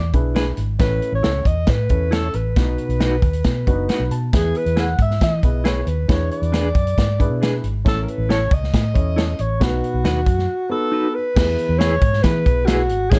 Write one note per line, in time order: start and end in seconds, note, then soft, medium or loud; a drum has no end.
0.00 0.11 E2 loud
0.00 0.14 D5 loud
0.13 0.52 B1 medium
0.13 0.58 D4 medium
0.13 0.58 E4 medium
0.13 0.58 G#4 medium
0.13 0.58 B4 medium
0.13 kick medium
0.13 closed hi-hat medium
0.35 0.50 D4 medium
0.35 0.50 G#4 medium
0.35 0.51 B4 medium
0.35 snare loud
0.35 closed hi-hat medium
0.57 0.77 G#1 medium
0.57 closed hi-hat medium
0.79 0.99 A1 loud
0.79 1.42 A2 medium
0.79 1.38 C#4 medium
0.79 1.39 E4 medium
0.79 1.38 A4 medium
0.79 1.11 B4 loud
0.79 1.39 C#5 medium
0.79 kick loud
0.79 snare loud
0.79 closed hi-hat medium
1.02 closed hi-hat medium
1.12 1.22 A1 loud
1.12 1.48 C#5 medium
1.23 1.44 C#2 medium
1.23 1.38 E4 medium
1.23 1.39 A4 medium
1.23 1.39 C#5 medium
1.23 snare loud
1.23 closed hi-hat medium
1.45 1.65 E2 medium
1.45 1.71 D#5 medium
1.45 kick medium
1.45 closed hi-hat medium
1.67 1.87 A2 loud
1.67 2.15 B4 loud
1.67 kick medium
1.67 snare loud
1.67 closed hi-hat medium
1.89 2.29 E2 medium
1.89 2.34 C#4 medium
1.89 2.34 E4 medium
1.89 2.34 A4 medium
1.89 2.34 C#5 medium
1.89 kick medium
1.89 closed hi-hat medium
2.11 2.26 E4 medium
2.11 2.27 A4 medium
2.11 2.37 A4 medium
2.11 2.27 C#5 medium
2.11 snare loud
2.11 closed hi-hat medium
2.34 2.54 A1 medium
2.34 4.11 B4 medium
2.34 closed hi-hat medium
2.56 2.76 B1 loud
2.56 3.19 B2 medium
2.56 3.15 B3 medium
2.56 3.15 D#4 medium
2.56 3.15 F#4 medium
2.56 3.15 B4 medium
2.56 kick loud
2.56 snare loud
2.56 closed hi-hat medium
2.78 closed hi-hat soft
2.89 3.18 B1 medium
2.89 closed hi-hat soft
3.00 3.15 D#4 medium
3.00 3.15 F#4 loud
3.00 3.16 B4 medium
3.00 snare medium
3.00 closed hi-hat medium
3.22 3.42 D#2 medium
3.22 kick loud
3.22 closed hi-hat medium
3.33 closed hi-hat medium
3.44 3.64 B2 loud
3.44 kick medium
3.44 snare loud
3.44 closed hi-hat medium
3.67 3.86 F#1 medium
3.67 4.11 B3 medium
3.67 3.72 D4 medium
3.67 4.11 F#4 medium
3.67 4.11 B4 medium
3.67 3.88 D#5 medium
3.67 kick medium
3.67 closed hi-hat medium
3.73 4.14 D#4 medium
3.89 4.03 D#4 medium
3.89 4.04 F#4 medium
3.89 4.04 B4 medium
3.89 4.10 F#5 medium
3.89 snare loud
3.89 closed hi-hat medium
3.99 4.09 B1 medium
4.11 4.30 B2 medium
4.11 4.32 A5 medium
4.11 closed hi-hat medium
4.33 4.52 E2 medium
4.33 4.95 E3 medium
4.33 4.92 B3 medium
4.33 4.92 E4 medium
4.33 4.92 G#4 medium
4.33 4.59 G#4 medium
4.33 4.92 B4 medium
4.33 kick loud
4.33 snare medium
4.33 closed hi-hat medium
4.55 4.82 B4 medium
4.55 closed hi-hat medium
4.66 4.95 E2 medium
4.66 closed hi-hat soft
4.76 4.91 E4 medium
4.76 4.92 G#4 medium
4.76 4.92 B4 medium
4.76 5.01 F#5 loud
4.76 snare medium
4.76 closed hi-hat medium
4.99 5.18 G#2 medium
4.99 5.21 E5 medium
4.99 kick medium
4.99 closed hi-hat medium
5.11 snare soft
5.21 5.41 E3 loud
5.21 5.63 D#5 medium
5.21 kick medium
5.21 snare loud
5.21 closed hi-hat medium
5.43 5.82 B1 medium
5.43 5.87 B3 medium
5.43 5.87 E4 medium
5.43 5.88 G#4 medium
5.43 5.88 B4 medium
5.43 kick medium
5.43 closed hi-hat medium
5.64 5.79 E4 medium
5.64 5.80 G#4 medium
5.64 5.80 B4 medium
5.64 5.90 C#5 medium
5.64 snare medium
5.64 closed hi-hat medium
5.87 6.06 D#2 medium
5.87 6.12 B4 medium
5.87 closed hi-hat medium
6.08 6.29 E2 medium
6.08 6.71 E3 medium
6.08 6.67 D4 medium
6.08 6.68 E4 medium
6.08 6.68 G#4 medium
6.08 6.68 B4 medium
6.08 6.31 C#5 medium
6.08 kick loud
6.08 snare loud
6.08 closed hi-hat medium
6.31 7.59 D5 medium
6.31 closed hi-hat soft
6.42 6.71 E2 loud
6.42 closed hi-hat soft
6.52 6.67 D4 medium
6.52 6.68 G#4 medium
6.52 6.68 B4 medium
6.52 snare medium
6.52 closed hi-hat medium
6.75 6.94 F#2 medium
6.75 kick medium
6.75 closed hi-hat medium
6.87 closed hi-hat medium
6.98 7.27 G#2 loud
6.98 kick medium
6.98 snare loud
6.98 closed hi-hat medium
7.19 7.63 D4 medium
7.19 7.63 E4 medium
7.19 7.63 G#4 medium
7.19 7.64 B4 medium
7.19 kick medium
7.19 closed hi-hat medium
7.30 7.59 B2 medium
7.41 7.56 D4 medium
7.41 7.56 G#4 medium
7.41 7.56 B4 medium
7.41 snare loud
7.41 closed hi-hat medium
7.64 7.83 G#1 medium
7.64 closed hi-hat medium
7.85 8.05 A1 medium
7.85 8.47 A2 medium
7.85 8.43 C#4 medium
7.85 8.43 E4 medium
7.85 8.44 A4 medium
7.85 8.05 A4 loud
7.85 8.44 C#5 medium
7.85 kick loud
7.85 snare medium
7.85 closed hi-hat medium
8.03 8.11 A#4 medium
8.08 8.33 B4 medium
8.08 closed hi-hat medium
8.18 8.47 A1 medium
8.29 8.44 E4 medium
8.29 8.44 A4 loud
8.29 8.44 C#5 loud
8.29 8.55 C#5 loud
8.29 snare loud
8.29 closed hi-hat medium
8.51 8.71 C#2 medium
8.51 9.42 D#5 medium
8.51 kick loud
8.51 closed hi-hat medium
8.64 snare soft
8.74 8.93 A2 loud
8.74 kick medium
8.74 snare loud
8.74 closed hi-hat medium
8.94 9.34 E2 medium
8.94 9.38 C#4 medium
8.94 9.38 E4 medium
8.94 9.38 A4 medium
8.94 9.39 C#5 medium
8.94 kick medium
8.94 closed hi-hat medium
9.16 9.31 E4 medium
9.16 9.32 A4 medium
9.16 9.32 C#5 medium
9.16 snare loud
9.16 closed hi-hat medium
9.39 9.58 A1 medium
9.39 9.65 C#5 medium
9.39 closed hi-hat medium
9.60 10.23 B2 medium
9.60 10.19 B3 medium
9.60 10.19 D#4 medium
9.60 10.19 F#4 medium
9.60 10.71 F#4 medium
9.60 10.19 B4 medium
9.60 kick medium
9.60 snare loud
9.60 closed hi-hat medium
9.84 closed hi-hat medium
9.94 10.03 B1 medium
10.04 10.24 D#2 medium
10.04 10.19 D#4 medium
10.04 10.19 F#4 medium
10.04 10.20 B4 medium
10.04 snare loud
10.04 closed hi-hat medium
10.26 10.46 F#2 medium
10.26 kick medium
10.26 closed hi-hat medium
10.39 snare soft
10.69 11.14 B3 medium
10.69 11.14 D#4 medium
10.69 11.14 F#4 medium
10.69 11.16 A4 medium
10.69 11.14 B4 medium
10.92 11.07 D#4 medium
10.92 11.07 F#4 medium
10.92 11.07 B4 medium
11.15 11.80 B4 medium
11.36 11.56 E2 medium
11.36 11.98 E3 medium
11.36 11.94 B3 medium
11.36 11.95 E4 medium
11.36 11.42 G4 medium
11.36 11.95 B4 medium
11.36 kick loud
11.36 snare loud
11.36 crash medium
11.41 11.97 G#4 medium
11.58 closed hi-hat medium
11.69 11.98 E2 loud
11.79 11.94 E4 loud
11.79 11.95 G#4 medium
11.79 11.95 B4 loud
11.79 12.24 C#5 loud
11.79 snare loud
11.79 closed hi-hat medium
12.01 12.21 G#2 loud
12.01 kick loud
12.01 closed hi-hat medium
12.13 snare soft
12.23 12.43 E3 loud
12.23 12.82 B3 medium
12.23 12.82 E4 medium
12.23 12.82 G#4 medium
12.23 12.68 B4 loud
12.23 12.82 B4 medium
12.23 kick loud
12.23 snare loud
12.23 closed hi-hat loud
12.46 12.91 B1 medium
12.46 kick medium
12.46 closed hi-hat medium
12.66 12.81 E4 medium
12.66 13.12 F#4 medium
12.66 12.82 G#4 medium
12.66 12.82 B4 medium
12.66 snare loud
12.66 closed hi-hat medium
12.89 13.09 G#1 medium
12.89 closed hi-hat medium
13.11 13.19 A1 loud
13.11 13.19 A2 medium
13.11 13.19 A3 medium
13.11 13.19 C#4 medium
13.11 13.19 E4 medium
13.11 13.19 G#4 loud
13.11 13.19 C#5 medium
13.11 kick loud
13.11 snare loud
13.11 closed hi-hat loud